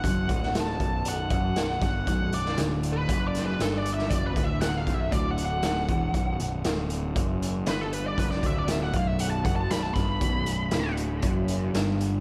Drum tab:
HH |x-x-x-x-x-x-x-x-|x-x-x-x-x-x-x-x-|x-x-x-x-x-x-x-x-|x-x-x-x-x-x-x-x-|
SD |---oo-------o-o-|---oo-----o-o--o|----o-------o---|----o-------o---|
BD |o-o---o---o---o-|o-------o-------|o-o---o-o-----o-|o-------o-------|

HH |x-x-x-x-x-x-x-x-|x-x-x-x-x-x-x-x-|
SD |-o--o-------o-o-|----o-------o---|
BD |o-o---o---o---o-|o-------o-------|